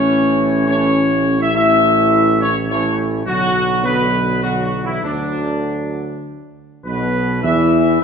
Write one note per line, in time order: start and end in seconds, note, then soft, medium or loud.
0.00 3.23 A1 loud
0.00 1.37 E3 medium
0.00 1.37 A3 medium
0.00 0.64 C#4 loud
0.00 0.63 C#5 loud
0.68 1.36 C#4 loud
0.68 1.36 C#5 loud
1.40 1.53 E4 loud
1.40 1.53 E5 loud
1.54 2.65 E3 medium
1.54 2.65 A3 medium
1.54 2.37 E4 loud
1.54 2.37 E5 loud
2.41 2.54 C#4 loud
2.41 2.54 C#5 loud
2.69 3.23 E3 medium
2.69 3.23 A3 medium
2.69 2.82 C#4 medium
2.69 2.96 C#5 loud
3.26 4.99 B1 medium
3.26 3.80 D3 medium
3.26 3.80 F#3 loud
3.26 3.80 F#3 medium
3.26 3.80 F#4 loud
3.83 4.38 D3 medium
3.83 4.38 F#3 medium
3.83 4.38 B3 loud
3.83 4.39 B4 loud
4.42 4.99 D3 medium
4.42 4.98 F#3 medium
4.42 4.51 F#3 medium
4.42 4.61 F#4 loud
4.63 4.82 F#3 medium
4.63 4.82 F#4 medium
4.84 5.02 E3 medium
4.84 5.02 E4 medium
5.02 6.50 D2 medium
5.02 6.50 D3 medium
5.02 6.20 D3 medium
5.02 6.50 F#3 medium
5.02 6.20 D4 medium
6.84 7.40 B1 loud
6.84 7.40 B2 medium
6.84 7.40 B3 medium
6.84 7.40 B4 loud
7.43 7.98 E2 loud
7.43 8.02 E3 loud
7.43 7.98 E4 loud
7.43 7.97 E5 loud
8.01 8.04 B4 loud